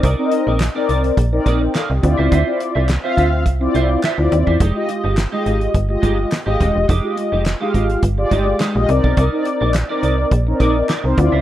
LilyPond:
<<
  \new Staff \with { instrumentName = "Clean electric guitar" } { \time 4/4 \key c \mixolydian \tempo 4 = 105 <ees' bes' d''>8 r16 <ees' bes' d''>16 r16 <ees' bes' d''>16 <ees' bes' d''>16 r8. <ees' bes' d''>16 r16 <ees' bes' d''>16 r8 <f' c'' e''>16 | <f' c'' e''>8 r16 <f' c'' e''>16 r16 <f' c'' e''>16 <f' c'' e''>16 r8. <f' c'' e''>16 r16 <f' c'' e''>16 r8 <f' c'' e''>16 | <aes ees' g'>8 r16 <aes ees' g'>16 r16 <aes ees' g'>16 <aes ees' g'>16 r8. <aes ees' g'>16 r8 <aes ees' g'>16 <aes ees' g'>16 r16 | <aes ees' g'>8 r16 <aes ees' g'>16 r16 <aes ees' g'>16 <aes ees' g'>16 r8. <aes ees' g'>16 r16 <aes ees' g'>16 r8 <ees' bes' d''>16 |
<ees' bes' d''>8 r16 <ees' bes' d''>16 r16 <ees' bes' d''>16 <ees' bes' d''>16 r8. <ees' bes' d''>16 r16 <ees' bes' d''>16 r8 <f' c'' e''>16 | }
  \new Staff \with { instrumentName = "Analog polysynth" } { \time 4/4 \key c \mixolydian << { r2 r8. <bes' g''>16 <a' f''>16 <g' ees''>8 r16 | r1 | r1 | r1 |
r1 | } \\ { r16 <c' ees' bes' d'' ees''>8. r16 <c' ees' bes' d''>8. r16 <c' ees' bes' d''>8. r8 <c' e' f' d''>8 | r16 <c' e' f' d''>8. r16 <c' f' e'' f''>8. r16 <c' e' f' d''>8. r16 <c' e' f' d''>8. | r16 <aes f' g' ees''>8. r16 <aes f' g' ees''>8. r16 <aes f' g' ees''>8. r16 <aes f' g' ees''>8. | r16 <aes f' g' ees''>8. r16 <aes f' g' f''>8. r16 <aes f' g' d''>8. r16 <aes f' g' ees''>16 <c' ees' bes' d''>8 |
r16 <c' ees' bes' d''>8. r16 <c' ees' bes' d''>8. r16 <c' ees' bes' cis'' d''>8. r16 <c' ees' bes' c''>16 <c' e' f' d''>8 | } >> }
  \new Staff \with { instrumentName = "FM bass" } { \clef bass \time 4/4 \key c \mixolydian c,16 r8 bes,,8 r16 c,8 bes,,8 bes,,8 r16 c,16 d,16 cis,16 | d,16 r8 c,8 r16 d,8 c,8 c,8 r16 d,16 ees,16 e,16 | f,,16 r8 g,,8 r16 aes,,8 g,,8 g,,8 r16 aes,,16 ees,,16 e,,16 | f,,16 r8 f,,8 r16 aes,,8 g,,8 g,,8 r16 bes,,16 c,16 b,,16 |
c,16 r8 bes,,8 r16 c,8 bes,,8 bes,,8 r16 c,16 d,16 cis,16 | }
  \new DrumStaff \with { instrumentName = "Drums" } \drummode { \time 4/4 <hh bd>8 hh8 <hc hh sn>8 hh16 hh16 <hh bd>8 <hh bd>8 <hc hh sn>8 <hh bd>8 | <hh bd>8 hh8 <hc hh sn>8 <hh bd>8 <hh bd>8 hh8 <hc hh sn>8 hh16 bd16 | <hh bd>8 hh8 <hc hh sn>8 hh16 hh16 <hh bd>8 <hh bd>8 <hc hh sn>8 <hh bd>8 | <hh bd>8 hh8 <hc hh sn>8 <hh bd>16 hh16 <hh bd>8 <hh bd>8 <hc hh sn>8 hh16 bd16 |
<hh bd>8 hh8 <hc hh sn>8 hh8 <hh bd>8 <hh bd>8 <hc hh sn>8 <hh bd>8 | }
>>